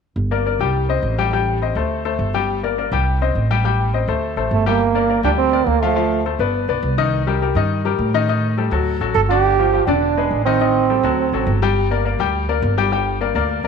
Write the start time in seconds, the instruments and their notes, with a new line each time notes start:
0.16 upright bass G1
0.31 grand piano A#3 A#4 D5
0.46 grand piano A#3 A#4 D5
0.59 upright bass C2, grand piano G3 G4 G5
0.89 grand piano C4 C5 D#5
1.02 upright bass A1
1.18 grand piano G3 G4 G5
1.33 grand piano G3 G4 G5
1.62 grand piano C4 C5 D#5
1.75 upright bass D2, grand piano A3 A4 C5
2.05 grand piano A3 A4 C5
2.19 upright bass G1
2.34 grand piano G3 G4 G5
2.63 grand piano A#3 A#4 D5
2.78 grand piano A#3 A#4 D5
2.92 upright bass C2, grand piano G3 G4 G5
3.21 grand piano C4 C5 D#5
3.35 upright bass A1
3.51 grand piano G3 G4 G5
3.65 grand piano G3 G4 G5
3.94 grand piano C4 C5 D#5
4.08 upright bass D2, grand piano A3 A4 C5
4.36 upright bass A1, grand piano A3 A4 C5
4.51 upright bass G1, trombone A3
4.66 grand piano G3 G4 G5, trombone A#3
4.95 grand piano A#3 A#4 D5
5.09 grand piano A#3 A#4 D5
5.23 upright bass D2, grand piano G3 G4 G5, trombone D4
5.39 trombone C4
5.52 grand piano A#3 A#4 D5
5.67 upright bass D2, trombone A#3
5.82 grand piano F3 F4 F5, trombone A3
5.96 grand piano F3 F4 F5
6.26 grand piano A3 A4 C5
6.39 upright bass G1, grand piano B3 B4 D5
6.68 upright bass B1, grand piano B3 B4 D5
6.82 upright bass C2
6.98 grand piano D#3 D#4 D#5
7.27 grand piano G3 G4 A#4
7.42 grand piano G3 G4 A#4
7.55 upright bass G2, grand piano D#3 D#4 D#5
7.85 grand piano G3 G4 A#4
7.99 upright bass A2
8.14 grand piano D#3 D#4 D#5
8.29 grand piano D#3 D#4 D#5
8.57 grand piano G3 G4 A4
8.71 upright bass D2, grand piano F#3 F#4 A4
9.00 upright bass A1, grand piano F#3 F#4 A4
9.15 upright bass G1, trombone A4
9.29 grand piano D3 D4 D5, trombone G4
9.59 grand piano F3 F4 G4
9.73 grand piano F3 F4 G4
9.87 upright bass E1, grand piano D3 D4 D5, trombone D4
10.17 grand piano G#3 G#4 B4
10.31 upright bass A1
10.45 grand piano D#3 D#4 D#5, trombone C4
10.61 grand piano D#3 D#4 D#5
10.90 grand piano G3 G4 A4
11.03 upright bass D2, grand piano F#3 F#4 A4
11.32 upright bass A1, grand piano F#3 F#4 A4
11.47 upright bass G1
11.62 grand piano G3 G4 G5
11.91 grand piano A#3 A#4 D5
12.05 grand piano A#3 A#4 D5
12.19 upright bass D2, grand piano G3 G4 G5
12.49 grand piano A#3 A#4 D5
12.62 upright bass G1
12.78 grand piano G3 G4 G5
12.92 grand piano G3 G4 G5
13.21 grand piano A#3 A#4 D5
13.35 upright bass D2, grand piano A#3 A#4 D5
13.64 upright bass D2, grand piano A#3